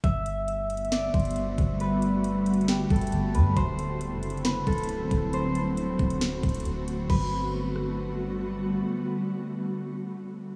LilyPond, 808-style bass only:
\new Staff \with { instrumentName = "808-style bass" } { \clef bass \time 4/4 \key g \major \tempo 4 = 136 g,,2~ g,,8 g,,4 g,,8~ | g,,2~ g,,8 g,,8 g,,8 g,8 | d,,4~ d,,16 fis,,4~ fis,,16 c,,4 d,,8~ | d,,4. d,,4 d,,8 d,,4 |
g,,1 | r1 | }